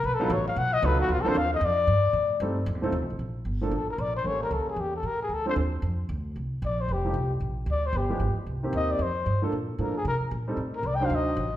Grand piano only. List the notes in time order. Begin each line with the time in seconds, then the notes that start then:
0.20 F#3 B3 D#4 F4 A4
0.83 F#3 B3 D#4 F4 A4
1.24 F3 A#3 C4 D4 A4
2.41 G3 A3 C4 D#4 A4
2.82 F3 A3 C4 D#4 A4
3.61 F3 A#3 D4 A4
4.24 G3 A#3 C#4 A4
5.46 F3 C4 D4 A4
7.05 F3 A3 D#4 G4
8.09 F3 G#3 B3 G4
8.63 D#3 A#3 C4 G4
9.42 F3 A#3 D4 A4
9.79 F3 A#3 D4 A4
10.47 G3 C4 D#4 A4
11.00 F#3 D4 D#4 C5